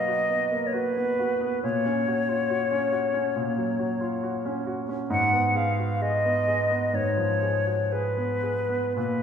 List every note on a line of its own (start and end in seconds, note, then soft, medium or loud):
0.00 1.66 B2 medium
0.00 0.22 F#3 soft
0.00 0.52 A#3 soft
0.00 0.29 B3 soft
0.00 0.08 F#4 soft
0.00 0.68 D#5 medium
0.08 0.43 F#4 soft
0.29 0.65 B3 soft
0.52 0.74 A#3 soft
0.67 0.74 C#5 soft
0.73 1.10 F#4 soft
0.73 1.62 B4 medium
0.97 1.33 B3 soft
1.19 1.55 F#4 soft
1.41 1.63 B3 soft
1.63 3.33 A#2 medium
1.63 4.63 C#5 medium
1.85 2.20 C#4 soft
2.08 2.42 F#4 soft
2.29 2.50 F4 soft
2.50 2.85 F#4 soft
2.71 3.06 C#4 soft
2.92 3.27 F#4 soft
3.14 3.49 C#4 soft
3.36 5.07 A#2 soft
3.57 3.92 F#3 soft
3.79 4.14 F#4 soft
4.01 4.23 F4 soft
4.23 4.58 F#4 soft
4.45 4.81 C#4 soft
4.67 5.02 F#4 soft
4.89 5.11 C#4 soft
5.10 6.89 G#2 medium
5.10 5.58 F#5 medium
5.33 5.70 B3 soft
5.55 5.92 G#4 soft
5.55 6.03 F5 medium
5.79 6.02 F#4 soft
6.01 6.38 G#4 soft
6.01 6.96 D#5 medium
6.25 6.62 B3 soft
6.47 6.84 G#4 soft
6.70 7.08 B3 soft
6.93 8.92 G#2 soft
6.93 7.93 C#5 medium
7.17 7.56 F3 soft
7.42 7.82 G#4 soft
7.67 7.92 F#4 soft
7.92 8.33 G#4 soft
7.92 8.96 B4 medium
8.17 8.59 B3 soft
8.43 8.85 G#4 soft
8.69 8.96 B3 soft
8.96 9.23 A#2 soft
8.96 9.23 B4 medium